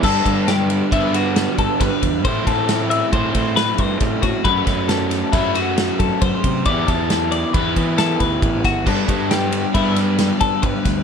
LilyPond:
<<
  \new Staff \with { instrumentName = "Clean electric guitar" } { \time 5/4 \key g \major \tempo 4 = 136 a'4 g'4 e'8 fis'4 a'8 b'4 | c''8 a'4 e''8 c''4 b'8 c''4 fis'8 | b'4 a'4 e'8 fis'4 a'8 c''4 | d''8 a'4 d''8 b'4 a'8 b'4 fis'8 |
a'4 g'4 e'8 r4 a'8 b'4 | }
  \new Staff \with { instrumentName = "Overdriven electric guitar" } { \time 5/4 \key g \major <g, d g b d'>2 <g, d g b d'>2. | <a, e a c' e'>2 <a, e a c' e'>2. | <fis a cis' fis'>2 <fis a cis' fis'>2. | <e b e' g'>2 <e b e' g'>2. |
<g b d' g'>2 <g b d' g'>2. | }
  \new Staff \with { instrumentName = "Fingered electric bass" } { \clef bass \time 5/4 \key g \major g,8 g,4. g,4. g,16 r16 g,16 r16 e,8 | a,8 a,4. a,8 a,4 g,8 a,8 a,16 r16 | fis,8 fis,4. fis,4. fis,16 r16 fis,16 r16 c8 | e,8 e,4. e,8 e4 d,8 a,,8 g,,8 |
g,8 g,4. g,4. g,16 r16 g,16 r16 d,8 | }
  \new DrumStaff \with { instrumentName = "Drums" } \drummode { \time 5/4 <cymc bd>8 <bd cymr>8 <cymr sn>8 cymr8 <bd cymr>8 cymr8 <cymr sn>8 <bd cymr>8 <bd cymr sn>8 <bd cymr>8 | <bd cymr>8 <bd cymr>8 <cymr sn>8 cymr8 <bd cymr>8 <bd cymr>8 <cymr sn>8 <bd cymr>8 <bd cymr sn>8 <bd cymr>8 | <bd cymr>8 <bd cymr sn>8 <cymr sn>8 <cymr sn>8 <bd cymr sn>8 cymr8 <cymr sn>8 <bd cymr>8 <bd cymr>8 <bd cymr>8 | <bd cymr>8 <bd cymr>8 <cymr sn>8 cymr8 <bd cymr>8 <bd cymr>8 <cymr sn>8 <bd cymr>8 <bd cymr>8 <bd cymr sn>8 |
<cymc bd>8 <bd cymr>8 <cymr sn>8 cymr8 <bd cymr>8 <cymr sn>8 <cymr sn>8 <bd cymr>8 <bd cymr>8 <bd cymr sn>8 | }
>>